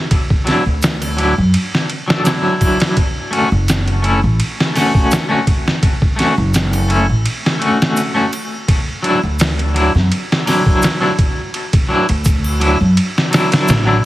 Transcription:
0.11 kick, ride
0.30 kick
0.45 clean electric guitar F#3 D4 E4, snare, ride
0.66 upright bass D2
0.82 snare, ride, shaker
1.02 ride, triangle
1.17 clean electric guitar F#3 D4 E4, ride
1.38 upright bass F#2
1.54 ride
1.75 snare
1.90 ride
2.08 clean electric guitar F#3 D4 A4, snare
2.24 clean electric guitar F#3 D4 E4, snare, ride, shaker
2.61 kick, ride, triangle
2.80 snare, ride
2.97 kick, ride
3.31 clean electric guitar A3 C#4 F#4, ride
3.52 upright bass F#1
3.68 snare, ride, shaker
3.88 ride
4.02 clean electric guitar A3 C#4 E4, ride
4.23 upright bass A1
4.40 ride
4.60 snare
4.74 clean electric guitar A3 C#4 F#4, snare, open hi-hat, triangle
4.95 kick
5.11 snare, ride, shaker
5.29 clean electric guitar A3 C#4 F#4
5.47 kick, ride
5.68 snare
5.83 kick, ride
6.02 kick
6.16 clean electric guitar A3 C#4 F#4, snare, ride
6.38 upright bass F#1
6.54 snare, ride, shaker
6.73 ride, triangle
6.88 clean electric guitar A3 C#4 E4, ride
7.09 upright bass A1
7.26 ride
7.46 snare
7.59 clean electric guitar A3 C#4 F#4, ride
7.82 snare
7.97 ride, shaker
8.14 clean electric guitar A3 C#4 F#4
8.33 ride, triangle
8.68 kick, ride
9.03 clean electric guitar F#3 D4 E4, ride
9.23 upright bass D2
9.39 snare, ride, shaker
9.59 ride
9.74 clean electric guitar F#3 D4 E4, ride
9.95 upright bass F#2, snare
10.12 ride
10.32 snare
10.46 clean electric guitar F#3 D4 E4, snare, open hi-hat, triangle
10.66 kick
10.82 snare, ride, shaker
11.00 clean electric guitar F#3 D4 E4
11.19 kick, ride
11.54 ride
11.73 kick, ride
11.89 clean electric guitar F#3 D4 E4
12.09 upright bass D2, ride
12.25 kick, ride, shaker
12.44 triangle
12.60 clean electric guitar F#3 D4 E4, ride
12.80 upright bass F#2
12.97 ride
13.18 snare
13.31 clean electric guitar F#3 D4 E4, snare, ride, triangle
13.52 snare, ride
13.68 upright bass A1, snare, ride, shaker
13.85 clean electric guitar F#3 D4 E4

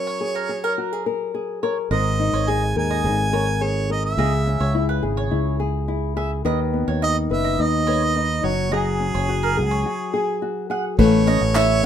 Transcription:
Already playing: nylon-string guitar F#3 C#4 A#4, harmonica C#5
0.07 mandolin C#5
0.21 nylon-string guitar G#4
0.35 mandolin A#4
0.49 nylon-string guitar G#4
0.64 nylon-string guitar A#4, mandolin A#4
0.78 nylon-string guitar F#4
0.93 nylon-string guitar G#4
1.06 nylon-string guitar A#4
1.34 nylon-string guitar G#4
1.63 nylon-string guitar A#4, mandolin C#5
1.91 fingered electric bass G#1, nylon-string guitar G#2 A#4, mandolin D#5, harmonica D#5
2.19 nylon-string guitar D#4
2.33 fingered electric bass G#1, mandolin C#5
2.48 nylon-string guitar G#4, mandolin D#5, harmonica G#5
2.76 fingered electric bass D#2, nylon-string guitar A#4, harmonica G#5
2.91 mandolin D#5
3.04 fingered electric bass G#1, nylon-string guitar G#4
3.33 nylon-string guitar A#4, mandolin C#5
3.61 nylon-string guitar G#4, harmonica C#5
3.90 nylon-string guitar A#4, harmonica D#5
4.05 harmonica E5
4.17 fingered electric bass C#2, nylon-string guitar C#3 G#4, mandolin D#5
4.47 nylon-string guitar C#4
4.60 fingered electric bass C#2, mandolin C#5
4.75 nylon-string guitar E4
4.89 mandolin B4
5.03 fingered electric bass G#1, nylon-string guitar G#4
5.17 mandolin C#5
5.31 fingered electric bass C#2, nylon-string guitar E4
5.60 nylon-string guitar G#4
5.88 nylon-string guitar E4
6.17 nylon-string guitar G#4, mandolin E5
6.45 fingered electric bass D#2, nylon-string guitar D#3 B4, mandolin D#5
6.73 nylon-string guitar B3
6.88 fingered electric bass D#2, mandolin C#5
7.02 nylon-string guitar D#4, mandolin D#5, harmonica D#5
7.30 fingered electric bass F#1, nylon-string guitar B4, harmonica E5
7.44 mandolin D#5
7.59 fingered electric bass D#2, nylon-string guitar D#4, harmonica D#5
7.87 nylon-string guitar B4, mandolin C#5
8.16 nylon-string guitar D#4
8.44 fingered electric bass F#1, nylon-string guitar F#3, harmonica C#5
8.72 nylon-string guitar F#3 G#4, harmonica G#4, mandolin D#5
9.00 nylon-string guitar C#4
9.14 fingered electric bass F#1, mandolin C#5
9.29 nylon-string guitar F#4
9.43 mandolin A#4
9.57 fingered electric bass C#2, nylon-string guitar G#4
9.71 mandolin C#5
9.86 nylon-string guitar F#4
10.14 nylon-string guitar G#4
10.42 nylon-string guitar F#4
10.70 nylon-string guitar G#4, mandolin F#5
10.99 fingered electric bass A1, nylon-string guitar A3 B4, harmonica C#5, kick, crash
11.27 nylon-string guitar C#4, mandolin D#5, tambourine
11.41 fingered electric bass A1
11.54 nylon-string guitar E4, mandolin E5, clap, tambourine

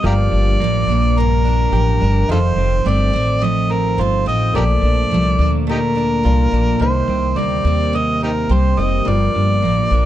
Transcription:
Already playing: steel-string acoustic guitar C3 G3 A#3 D#4 G4
0.03 upright bass G1, steel-string acoustic guitar G2, clean electric guitar F3, upright piano A#3 G4 F5, harmonica G4 A#4 D5
0.32 upright bass G1, clean electric guitar D4
0.60 upright bass A1, steel-string acoustic guitar F3, clean electric guitar A#3
0.87 upright bass A#1, steel-string acoustic guitar A#3, clean electric guitar D4
1.17 steel-string acoustic guitar G2, clean electric guitar A#3, harmonica A#4
1.45 clean electric guitar D4, steel-string acoustic guitar D4
1.72 upright bass A1, steel-string acoustic guitar F3, clean electric guitar G4
2.01 upright bass G1, steel-string acoustic guitar A#3, clean electric guitar D4
2.29 upright bass F1, clean electric guitar D#3, steel-string acoustic guitar F3, upright piano D#4 A4, harmonica F4 A4 C5
2.33 upright piano F5
2.56 upright bass F1, clean electric guitar C4
2.85 upright bass G1, clean electric guitar A3, steel-string acoustic guitar C4, harmonica D5
3.13 upright bass A1, steel-string acoustic guitar C4, clean electric guitar C4
3.42 steel-string acoustic guitar F3, clean electric guitar A3, harmonica D#5
3.70 clean electric guitar C4, steel-string acoustic guitar D#4, harmonica A#4
3.98 upright bass G1, steel-string acoustic guitar C4, clean electric guitar F4, harmonica C5
4.26 upright bass A1, steel-string acoustic guitar C4, clean electric guitar C4, harmonica D#5
4.53 upright bass A#1, steel-string acoustic guitar A#2, clean electric guitar A3, upright piano A#3 D5 A5, harmonica G4 A#4 D5
4.82 upright bass A#1, clean electric guitar D4
5.10 upright bass C2, steel-string acoustic guitar F3, clean electric guitar A3
5.39 upright bass D2, steel-string acoustic guitar A#3, clean electric guitar D4
5.67 steel-string acoustic guitar A#2, clean electric guitar A3, harmonica D#4 G4 A#4
5.95 steel-string acoustic guitar D4, clean electric guitar D4
6.23 upright bass C2, steel-string acoustic guitar F3, upright piano A#3 D5 A5, clean electric guitar F4
6.51 upright bass A#1, steel-string acoustic guitar A#3, clean electric guitar D4
6.79 upright bass C2, steel-string acoustic guitar C3, clean electric guitar D#3, upright piano A#3 D#4 C5, harmonica C5
7.08 upright bass C2, clean electric guitar C4
7.36 upright bass D2, steel-string acoustic guitar G3, clean electric guitar A#3, harmonica D5
7.64 upright bass D#2, steel-string acoustic guitar A#3, clean electric guitar C4
7.93 steel-string acoustic guitar C3, clean electric guitar A#3, harmonica D#5
8.21 clean electric guitar C4, steel-string acoustic guitar D#4, harmonica D#4 G4 A#4
8.49 upright bass C2, steel-string acoustic guitar G3, clean electric guitar G4, harmonica C5
8.77 upright bass F1, steel-string acoustic guitar A#3, upright piano A#3 D#4 C5, clean electric guitar C4, harmonica D#5
9.05 upright bass G1, steel-string acoustic guitar G2, clean electric guitar F3, upright piano G3 F4, harmonica D5
9.09 upright piano A#4
9.35 upright bass G1, clean electric guitar D4
9.62 upright bass A1, steel-string acoustic guitar F3, clean electric guitar A#3
9.91 upright bass A#1, steel-string acoustic guitar A#3, clean electric guitar D4

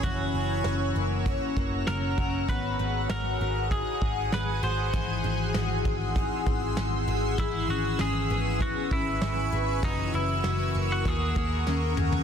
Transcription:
Already playing: twelve-string acoustic guitar C#4, ambient pad C#5
0.03 picked electric bass F#1, twelve-string acoustic guitar E3 F#4, clean electric guitar F#4, ambient pad F#5 A#5 E6, kick, closed hi-hat
0.34 picked electric bass F#1, twelve-string acoustic guitar C#4
0.64 picked electric bass F#1, twelve-string acoustic guitar F#4, snare, closed hi-hat
0.96 picked electric bass F#1, twelve-string acoustic guitar A#3
1.26 twelve-string acoustic guitar C#4, kick, closed hi-hat
1.57 picked electric bass F#1, twelve-string acoustic guitar A#3, kick
1.87 picked electric bass F#1, clean electric guitar A#4, snare, closed hi-hat
2.18 picked electric bass F#1, twelve-string acoustic guitar F#4, kick
2.48 picked electric bass G#1, twelve-string acoustic guitar B3 F#4, ambient pad G#4 G#5 D#6, clean electric guitar B4, kick, closed hi-hat
2.79 picked electric bass G#1, twelve-string acoustic guitar D#4
3.09 picked electric bass G#1, twelve-string acoustic guitar F#4, clean electric guitar A#4, snare, closed hi-hat
3.41 picked electric bass G#1, twelve-string acoustic guitar B3
3.71 twelve-string acoustic guitar D#4, clean electric guitar G#4, kick, closed hi-hat
4.02 picked electric bass G#1, kick
4.32 picked electric bass G#1, twelve-string acoustic guitar D#4, clean electric guitar B4, snare, closed hi-hat
4.63 picked electric bass G#1, twelve-string acoustic guitar F#4, clean electric guitar C5
4.93 picked electric bass G#1, twelve-string acoustic guitar E3 F#4, ambient pad C6 E6, kick, closed hi-hat
5.24 picked electric bass G#1, twelve-string acoustic guitar D#4
5.54 picked electric bass G#1, twelve-string acoustic guitar F#4, snare, closed hi-hat
5.85 picked electric bass G#1, twelve-string acoustic guitar C4, kick
6.16 twelve-string acoustic guitar D#4, kick, closed hi-hat
6.46 picked electric bass G#1, twelve-string acoustic guitar C4, kick
6.77 picked electric bass G#1, twelve-string acoustic guitar D#4, snare, closed hi-hat
7.07 picked electric bass G#1, twelve-string acoustic guitar F#4
7.38 picked electric bass G#1, twelve-string acoustic guitar E3 G#4, clean electric guitar E4, ambient pad B4 G#5 C#6, kick, closed hi-hat
7.68 picked electric bass G#1, twelve-string acoustic guitar C#4, clean electric guitar F#4
7.99 picked electric bass G#1, twelve-string acoustic guitar G#4, clean electric guitar G#4, snare, closed hi-hat
8.30 picked electric bass G#1, twelve-string acoustic guitar B3
8.61 twelve-string acoustic guitar C#4, clean electric guitar F#4, kick, closed hi-hat
8.91 picked electric bass G#1, twelve-string acoustic guitar B3, clean electric guitar E4, kick
9.22 picked electric bass G#1, twelve-string acoustic guitar C#4, snare, closed hi-hat
9.52 picked electric bass G#1, twelve-string acoustic guitar G#4
9.83 picked electric bass F#1, twelve-string acoustic guitar E3 F#4, clean electric guitar D#4, ambient pad A#4 F#5 E6, kick, closed hi-hat
10.14 picked electric bass F#1, twelve-string acoustic guitar C#4, clean electric guitar E4
10.44 picked electric bass F#1, twelve-string acoustic guitar F#4, snare, closed hi-hat
10.75 picked electric bass F#1, twelve-string acoustic guitar A#3
10.92 clean electric guitar F#4
11.05 picked electric bass D#2, twelve-string acoustic guitar A#3, clean electric guitar G#4, ambient pad G#5 C#6, kick, closed hi-hat
11.36 picked electric bass D#2, twelve-string acoustic guitar A#3, kick
11.67 picked electric bass D#2, twelve-string acoustic guitar C#4, snare
11.97 picked electric bass D#2, twelve-string acoustic guitar G#4, mid tom
12.12 floor tom

